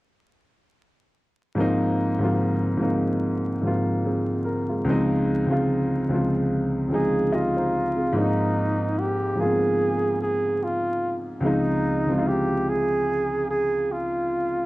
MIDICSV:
0, 0, Header, 1, 3, 480
1, 0, Start_track
1, 0, Key_signature, -4, "major"
1, 0, Tempo, 821918
1, 919, Time_signature, 4, 2, 24, 8
1, 8561, End_track
2, 0, Start_track
2, 0, Title_t, "Flugelhorn"
2, 0, Program_c, 0, 56
2, 4052, Note_on_c, 0, 68, 92
2, 4291, Note_on_c, 0, 65, 90
2, 4300, Note_off_c, 0, 68, 0
2, 4773, Note_on_c, 0, 63, 96
2, 4782, Note_off_c, 0, 65, 0
2, 5250, Note_on_c, 0, 67, 90
2, 5258, Note_off_c, 0, 63, 0
2, 5490, Note_on_c, 0, 68, 96
2, 5499, Note_off_c, 0, 67, 0
2, 5965, Note_off_c, 0, 68, 0
2, 5968, Note_on_c, 0, 68, 85
2, 6209, Note_on_c, 0, 65, 87
2, 6217, Note_off_c, 0, 68, 0
2, 6536, Note_off_c, 0, 65, 0
2, 6689, Note_on_c, 0, 63, 94
2, 7168, Note_on_c, 0, 67, 83
2, 7177, Note_off_c, 0, 63, 0
2, 7411, Note_on_c, 0, 68, 98
2, 7420, Note_off_c, 0, 67, 0
2, 7885, Note_off_c, 0, 68, 0
2, 7888, Note_on_c, 0, 68, 92
2, 8130, Note_on_c, 0, 65, 84
2, 8139, Note_off_c, 0, 68, 0
2, 8561, Note_off_c, 0, 65, 0
2, 8561, End_track
3, 0, Start_track
3, 0, Title_t, "Upright piano"
3, 0, Program_c, 1, 0
3, 904, Note_on_c, 1, 44, 87
3, 912, Note_on_c, 1, 53, 84
3, 920, Note_on_c, 1, 58, 87
3, 929, Note_on_c, 1, 60, 85
3, 936, Note_on_c, 1, 63, 103
3, 1023, Control_c, 1, 64, 127
3, 1240, Note_off_c, 1, 44, 0
3, 1244, Note_off_c, 1, 53, 0
3, 1247, Note_off_c, 1, 58, 0
3, 1252, Note_off_c, 1, 60, 0
3, 1256, Note_off_c, 1, 63, 0
3, 1277, Note_on_c, 1, 44, 76
3, 1284, Note_on_c, 1, 53, 75
3, 1293, Note_on_c, 1, 58, 69
3, 1300, Note_on_c, 1, 60, 68
3, 1309, Note_on_c, 1, 65, 75
3, 1595, Note_off_c, 1, 44, 0
3, 1598, Note_off_c, 1, 53, 0
3, 1603, Note_off_c, 1, 58, 0
3, 1607, Note_off_c, 1, 60, 0
3, 1611, Note_off_c, 1, 65, 0
3, 1619, Note_on_c, 1, 44, 73
3, 1627, Note_on_c, 1, 53, 60
3, 1634, Note_on_c, 1, 58, 71
3, 1643, Note_on_c, 1, 60, 66
3, 1650, Note_on_c, 1, 63, 76
3, 2061, Note_off_c, 1, 44, 0
3, 2065, Note_off_c, 1, 53, 0
3, 2068, Note_off_c, 1, 58, 0
3, 2073, Note_off_c, 1, 60, 0
3, 2076, Note_off_c, 1, 63, 0
3, 2111, Note_on_c, 1, 44, 65
3, 2119, Note_on_c, 1, 53, 59
3, 2127, Note_on_c, 1, 58, 52
3, 2134, Note_on_c, 1, 60, 59
3, 2142, Note_on_c, 1, 65, 76
3, 2358, Note_off_c, 1, 60, 0
3, 2363, Note_off_c, 1, 58, 0
3, 2364, Note_on_c, 1, 68, 53
3, 2367, Note_on_c, 1, 60, 53
3, 2371, Note_off_c, 1, 65, 0
3, 2590, Note_off_c, 1, 68, 0
3, 2591, Note_off_c, 1, 60, 0
3, 2597, Note_on_c, 1, 70, 65
3, 2725, Note_off_c, 1, 70, 0
3, 2740, Note_on_c, 1, 65, 49
3, 2744, Note_on_c, 1, 56, 50
3, 2762, Note_off_c, 1, 44, 0
3, 2766, Note_off_c, 1, 53, 0
3, 2829, Note_on_c, 1, 37, 99
3, 2836, Note_off_c, 1, 56, 0
3, 2837, Note_on_c, 1, 53, 79
3, 2845, Note_on_c, 1, 56, 83
3, 2847, Control_c, 1, 64, 0
3, 2853, Note_on_c, 1, 60, 88
3, 2861, Note_on_c, 1, 63, 108
3, 2939, Control_c, 1, 64, 127
3, 2965, Note_off_c, 1, 65, 0
3, 3162, Note_off_c, 1, 37, 0
3, 3166, Note_off_c, 1, 53, 0
3, 3170, Note_off_c, 1, 56, 0
3, 3174, Note_off_c, 1, 60, 0
3, 3178, Note_off_c, 1, 63, 0
3, 3190, Note_on_c, 1, 37, 77
3, 3198, Note_on_c, 1, 53, 67
3, 3205, Note_on_c, 1, 56, 68
3, 3214, Note_on_c, 1, 60, 69
3, 3222, Note_on_c, 1, 65, 83
3, 3511, Note_off_c, 1, 37, 0
3, 3515, Note_off_c, 1, 53, 0
3, 3519, Note_off_c, 1, 56, 0
3, 3523, Note_off_c, 1, 60, 0
3, 3527, Note_off_c, 1, 65, 0
3, 3555, Note_on_c, 1, 37, 79
3, 3562, Note_on_c, 1, 53, 73
3, 3571, Note_on_c, 1, 56, 64
3, 3579, Note_on_c, 1, 60, 72
3, 3587, Note_on_c, 1, 65, 73
3, 3989, Note_off_c, 1, 37, 0
3, 3992, Note_off_c, 1, 53, 0
3, 3997, Note_off_c, 1, 56, 0
3, 4001, Note_off_c, 1, 60, 0
3, 4005, Note_off_c, 1, 65, 0
3, 4019, Note_on_c, 1, 37, 68
3, 4028, Note_on_c, 1, 53, 66
3, 4035, Note_on_c, 1, 56, 73
3, 4043, Note_on_c, 1, 60, 68
3, 4052, Note_on_c, 1, 63, 88
3, 4276, Note_on_c, 1, 75, 62
3, 4278, Note_on_c, 1, 67, 47
3, 4281, Note_off_c, 1, 60, 0
3, 4286, Note_off_c, 1, 63, 0
3, 4405, Note_off_c, 1, 75, 0
3, 4406, Note_off_c, 1, 67, 0
3, 4418, Note_on_c, 1, 72, 58
3, 4422, Note_on_c, 1, 63, 55
3, 4644, Note_off_c, 1, 72, 0
3, 4646, Note_off_c, 1, 63, 0
3, 4649, Note_on_c, 1, 68, 51
3, 4652, Note_on_c, 1, 60, 43
3, 4677, Note_off_c, 1, 37, 0
3, 4681, Note_off_c, 1, 53, 0
3, 4685, Note_off_c, 1, 56, 0
3, 4746, Note_on_c, 1, 44, 90
3, 4754, Note_on_c, 1, 53, 66
3, 4761, Note_off_c, 1, 60, 0
3, 4762, Note_on_c, 1, 58, 69
3, 4767, Control_c, 1, 64, 0
3, 4770, Note_on_c, 1, 60, 73
3, 4778, Note_on_c, 1, 62, 64
3, 4811, Note_off_c, 1, 62, 0
3, 4816, Note_on_c, 1, 63, 85
3, 4879, Note_off_c, 1, 68, 0
3, 4881, Control_c, 1, 64, 127
3, 5400, Note_off_c, 1, 44, 0
3, 5404, Note_off_c, 1, 53, 0
3, 5408, Note_off_c, 1, 58, 0
3, 5412, Note_off_c, 1, 60, 0
3, 5435, Note_off_c, 1, 63, 0
3, 5462, Note_on_c, 1, 44, 64
3, 5470, Note_on_c, 1, 53, 64
3, 5478, Note_on_c, 1, 58, 53
3, 5486, Note_on_c, 1, 59, 51
3, 5495, Note_on_c, 1, 65, 69
3, 5525, Note_off_c, 1, 59, 0
3, 5525, Note_on_c, 1, 60, 62
3, 6334, Note_off_c, 1, 44, 0
3, 6338, Note_off_c, 1, 53, 0
3, 6342, Note_off_c, 1, 58, 0
3, 6350, Note_off_c, 1, 65, 0
3, 6365, Note_off_c, 1, 60, 0
3, 6660, Note_on_c, 1, 37, 84
3, 6668, Note_on_c, 1, 53, 75
3, 6676, Note_on_c, 1, 56, 73
3, 6685, Control_c, 1, 64, 0
3, 6685, Note_on_c, 1, 60, 69
3, 6692, Note_on_c, 1, 63, 91
3, 6801, Control_c, 1, 64, 127
3, 6998, Note_off_c, 1, 37, 0
3, 7002, Note_off_c, 1, 53, 0
3, 7006, Note_off_c, 1, 56, 0
3, 7010, Note_off_c, 1, 60, 0
3, 7014, Note_off_c, 1, 63, 0
3, 7042, Note_on_c, 1, 37, 57
3, 7050, Note_on_c, 1, 53, 67
3, 7058, Note_on_c, 1, 56, 60
3, 7066, Note_on_c, 1, 60, 66
3, 7074, Note_on_c, 1, 64, 65
3, 7097, Note_off_c, 1, 64, 0
3, 7112, Note_on_c, 1, 65, 78
3, 7885, Note_off_c, 1, 37, 0
3, 7889, Note_off_c, 1, 53, 0
3, 7893, Note_off_c, 1, 56, 0
3, 7897, Note_off_c, 1, 60, 0
3, 7920, Note_off_c, 1, 65, 0
3, 8561, End_track
0, 0, End_of_file